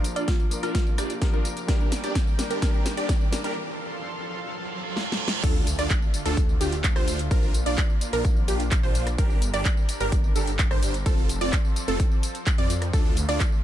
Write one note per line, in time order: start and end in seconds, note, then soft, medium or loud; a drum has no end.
0.00 0.14 A#1 loud
0.00 0.48 F3 medium
0.00 0.48 A#3 medium
0.00 0.49 D4 medium
0.00 0.49 A#4 loud
0.00 3.52 A#4 medium
0.00 1.65 F5 medium
0.00 3.52 D6 medium
0.00 riser medium
0.04 open hi-hat loud
0.04 tambourine medium
0.16 0.28 A#1 loud
0.16 0.31 D4 loud
0.16 0.24 F4 medium
0.16 0.31 F4 medium
0.16 0.31 D5 loud
0.16 closed hi-hat medium
0.16 tambourine soft
0.28 0.35 F4 medium
0.28 kick loud
0.28 snare medium
0.28 closed hi-hat medium
0.28 tambourine soft
0.40 tambourine soft
0.50 1.18 F3 medium
0.50 1.19 A#3 medium
0.50 1.19 D4 medium
0.50 1.19 A#4 medium
0.50 open hi-hat loud
0.50 tambourine medium
0.63 0.96 A#1 medium
0.63 0.78 D4 medium
0.63 0.78 F4 medium
0.63 0.80 F4 medium
0.63 0.78 A#4 loud
0.63 cross-stick medium
0.63 closed hi-hat medium
0.63 tambourine soft
0.75 kick loud
0.75 snare medium
0.75 closed hi-hat medium
0.75 tambourine soft
0.87 tambourine soft
0.98 1.31 A#1 loud
0.98 1.13 D4 medium
0.98 1.13 F4 medium
0.98 1.64 G4 medium
0.98 1.13 D5 medium
0.98 cross-stick medium
0.98 open hi-hat loud
0.98 tambourine medium
1.10 closed hi-hat medium
1.10 tambourine soft
1.21 1.65 F3 medium
1.21 1.66 A#3 medium
1.21 1.66 D4 medium
1.21 1.66 A#4 medium
1.21 kick loud
1.21 snare medium
1.21 closed hi-hat medium
1.21 tambourine soft
1.33 1.66 A#1 loud
1.33 1.48 D4 medium
1.33 1.48 F4 medium
1.33 1.48 A#4 medium
1.33 tambourine soft
1.45 open hi-hat loud
1.45 tambourine medium
1.57 closed hi-hat medium
1.57 tambourine soft
1.67 2.35 G3 medium
1.67 2.36 A#3 medium
1.67 1.92 D4 medium
1.67 2.36 D4 medium
1.67 1.92 G4 medium
1.67 1.92 A#4 medium
1.67 2.37 A#4 loud
1.67 3.54 G5 medium
1.67 kick loud
1.67 snare medium
1.67 closed hi-hat medium
1.67 tambourine soft
1.80 tambourine soft
1.92 snare medium
1.92 open hi-hat loud
1.92 tambourine medium
2.04 2.16 G1 loud
2.04 2.18 D4 medium
2.04 2.18 G4 medium
2.04 2.18 D5 loud
2.04 2.18 D5 medium
2.04 closed hi-hat medium
2.04 tambourine soft
2.15 kick loud
2.15 snare medium
2.15 closed hi-hat medium
2.15 tambourine soft
2.27 tambourine soft
2.38 2.60 G3 medium
2.38 2.60 A#3 medium
2.38 2.61 D4 medium
2.38 2.61 A#4 medium
2.38 snare medium
2.38 open hi-hat loud
2.38 tambourine medium
2.50 2.60 G1 loud
2.50 2.60 D4 medium
2.50 2.60 G4 medium
2.50 2.60 A#4 loud
2.50 2.60 A#4 medium
2.50 closed hi-hat medium
2.50 tambourine soft
2.61 2.95 G1 loud
2.61 3.29 G3 medium
2.61 3.30 A#3 medium
2.61 2.86 D4 medium
2.61 3.30 D4 medium
2.61 2.86 G4 medium
2.61 2.86 A#4 medium
2.61 3.30 A#4 medium
2.61 kick loud
2.61 snare medium
2.61 closed hi-hat medium
2.61 tambourine soft
2.74 tambourine soft
2.86 snare medium
2.86 open hi-hat loud
2.86 tambourine medium
2.97 3.10 G1 loud
2.97 3.12 D4 loud
2.97 3.12 G4 medium
2.97 3.12 D5 loud
2.97 closed hi-hat medium
2.97 tambourine soft
3.09 kick loud
3.09 snare medium
3.09 closed hi-hat medium
3.09 tambourine soft
3.21 tambourine soft
3.31 3.54 G3 medium
3.31 3.54 A#3 medium
3.31 3.54 D4 medium
3.31 3.55 A#4 medium
3.31 snare medium
3.31 open hi-hat loud
3.31 tambourine medium
3.44 3.54 G1 loud
3.44 3.54 D4 medium
3.44 3.54 G4 medium
3.44 3.54 A#4 loud
3.44 closed hi-hat medium
3.44 tambourine soft
3.56 5.42 A4 medium
3.56 5.42 F5 medium
3.56 5.42 C6 medium
4.50 reverse cymbal medium
4.97 snare medium
5.12 snare medium
5.28 snare loud
5.43 5.76 D2 loud
5.43 7.29 D3 medium
5.43 7.29 A3 medium
5.43 5.67 D4 medium
5.43 9.15 F4 medium
5.43 5.67 F4 medium
5.43 5.67 A4 loud
5.43 kick loud
5.43 closed hi-hat medium
5.43 crash loud
5.43 tambourine soft
5.43 sub drop medium
5.55 tambourine soft
5.67 open hi-hat loud
5.67 tambourine medium
5.79 5.91 D2 loud
5.79 5.93 D4 loud
5.79 5.93 F4 medium
5.79 5.93 D5 loud
5.79 cross-stick medium
5.79 closed hi-hat medium
5.79 tambourine soft
5.90 kick loud
5.90 clap loud
5.90 closed hi-hat medium
5.90 tambourine soft
6.02 tambourine soft
6.14 open hi-hat loud
6.14 tambourine medium
6.26 6.58 D2 loud
6.26 6.40 D4 medium
6.26 6.40 F4 medium
6.26 6.40 A4 loud
6.26 closed hi-hat medium
6.26 tambourine soft
6.37 kick loud
6.37 closed hi-hat medium
6.37 tambourine soft
6.49 tambourine soft
6.61 6.94 D2 loud
6.61 6.75 D4 medium
6.61 6.75 F4 medium
6.61 6.75 G4 medium
6.61 open hi-hat loud
6.61 tambourine medium
6.72 closed hi-hat medium
6.72 tambourine soft
6.84 kick loud
6.84 clap loud
6.84 closed hi-hat medium
6.84 tambourine soft
6.96 7.29 D2 loud
6.96 7.19 D4 medium
6.96 7.19 F4 medium
6.96 7.19 C5 loud
6.96 7.19 C5 medium
6.96 cross-stick medium
6.96 tambourine soft
7.08 open hi-hat loud
7.08 tambourine medium
7.19 closed hi-hat medium
7.19 tambourine soft
7.31 7.64 A#1 loud
7.31 9.17 A#3 medium
7.31 7.54 D4 medium
7.31 11.02 D4 medium
7.31 7.54 F4 medium
7.31 7.54 A#4 loud
7.31 7.54 A#4 medium
7.31 kick loud
7.31 closed hi-hat medium
7.31 tambourine soft
7.43 tambourine soft
7.54 open hi-hat loud
7.54 tambourine medium
7.66 7.78 A#1 loud
7.66 7.81 D4 loud
7.66 7.81 F4 medium
7.66 7.81 D5 loud
7.66 closed hi-hat medium
7.66 tambourine soft
7.78 kick loud
7.78 clap loud
7.78 closed hi-hat medium
7.78 tambourine soft
7.90 tambourine soft
8.01 open hi-hat loud
8.01 tambourine medium
8.13 8.46 A#1 loud
8.13 8.28 D4 medium
8.13 8.28 F4 medium
8.13 8.28 A#4 loud
8.13 closed hi-hat medium
8.13 tambourine soft
8.25 kick loud
8.25 closed hi-hat medium
8.25 tambourine soft
8.37 tambourine soft
8.48 8.81 A#1 loud
8.48 8.63 D4 medium
8.48 8.63 F4 medium
8.48 8.63 G4 medium
8.48 open hi-hat loud
8.48 tambourine medium
8.60 closed hi-hat medium
8.60 tambourine soft
8.71 kick loud
8.71 clap loud
8.71 closed hi-hat medium
8.71 tambourine soft
8.83 9.16 A#1 loud
8.83 9.07 D4 medium
8.83 9.07 F4 medium
8.83 9.07 C5 medium
8.83 tambourine soft
8.95 open hi-hat loud
8.95 tambourine medium
9.07 cross-stick medium
9.07 closed hi-hat medium
9.07 tambourine soft
9.18 11.04 G3 medium
9.18 9.42 D4 medium
9.18 9.42 G4 medium
9.18 11.04 A#4 medium
9.18 9.42 A#4 loud
9.18 kick loud
9.18 closed hi-hat medium
9.18 tambourine soft
9.30 tambourine soft
9.42 open hi-hat loud
9.42 tambourine medium
9.54 9.66 G1 loud
9.54 9.68 D4 loud
9.54 9.68 G4 medium
9.54 9.68 D5 loud
9.54 cross-stick medium
9.54 closed hi-hat medium
9.54 tambourine soft
9.65 kick loud
9.65 clap loud
9.65 closed hi-hat medium
9.65 tambourine soft
9.77 tambourine soft
9.89 open hi-hat loud
9.89 tambourine medium
10.00 10.33 G1 loud
10.00 10.15 D4 medium
10.00 10.15 G4 medium
10.00 10.15 A#4 loud
10.00 closed hi-hat medium
10.00 tambourine soft
10.12 kick loud
10.12 closed hi-hat medium
10.12 tambourine soft
10.24 tambourine soft
10.36 10.69 G1 loud
10.36 10.50 D4 medium
10.36 10.50 G4 medium
10.36 10.50 A4 medium
10.36 open hi-hat loud
10.36 tambourine medium
10.47 closed hi-hat medium
10.47 tambourine soft
10.59 kick loud
10.59 clap loud
10.59 closed hi-hat medium
10.59 tambourine soft
10.71 11.04 G1 loud
10.71 10.94 D4 medium
10.71 10.94 G4 medium
10.71 10.94 C5 medium
10.71 10.94 C5 loud
10.71 cross-stick medium
10.71 tambourine soft
10.83 open hi-hat loud
10.83 tambourine medium
10.94 closed hi-hat medium
10.94 tambourine soft
11.06 12.92 F3 medium
11.06 11.29 C4 medium
11.06 12.92 C4 medium
11.06 11.29 F4 medium
11.06 11.29 A4 medium
11.06 11.29 A4 loud
11.06 12.92 A4 medium
11.06 kick loud
11.06 closed hi-hat medium
11.06 tambourine soft
11.18 tambourine soft
11.29 open hi-hat loud
11.29 tambourine medium
11.41 11.53 F1 medium
11.41 11.56 C4 loud
11.41 11.56 F4 medium
11.41 11.56 D5 loud
11.41 closed hi-hat medium
11.41 tambourine soft
11.53 kick loud
11.53 clap loud
11.53 closed hi-hat medium
11.53 tambourine soft
11.65 tambourine soft
11.76 open hi-hat loud
11.76 tambourine medium
11.88 12.00 F1 loud
11.88 12.03 C4 medium
11.88 12.03 F4 medium
11.88 12.03 A4 loud
11.88 closed hi-hat medium
11.88 tambourine soft
12.00 kick loud
12.00 closed hi-hat medium
12.00 tambourine soft
12.12 tambourine soft
12.23 open hi-hat loud
12.23 tambourine medium
12.35 closed hi-hat medium
12.35 tambourine soft
12.46 kick loud
12.46 clap loud
12.46 closed hi-hat medium
12.46 tambourine soft
12.58 12.91 F2 loud
12.58 12.73 C4 medium
12.58 12.73 F4 medium
12.58 12.73 D5 loud
12.58 closed hi-hat soft
12.58 tambourine soft
12.70 open hi-hat loud
12.70 tambourine medium
12.82 cross-stick medium
12.82 closed hi-hat medium
12.82 tambourine soft
12.93 13.26 D2 loud
12.93 13.64 D3 medium
12.93 13.64 A3 medium
12.93 13.17 D4 medium
12.93 13.64 F4 medium
12.93 13.17 F4 medium
12.93 13.17 A4 loud
12.93 kick loud
12.93 closed hi-hat medium
12.93 tambourine soft
13.05 tambourine soft
13.17 open hi-hat loud
13.17 tambourine medium
13.29 13.41 D2 loud
13.29 13.43 D4 loud
13.29 13.43 F4 medium
13.29 13.43 D5 loud
13.29 cross-stick medium
13.29 closed hi-hat medium
13.29 tambourine soft
13.40 kick loud
13.40 clap loud
13.40 closed hi-hat medium
13.40 tambourine soft
13.52 tambourine soft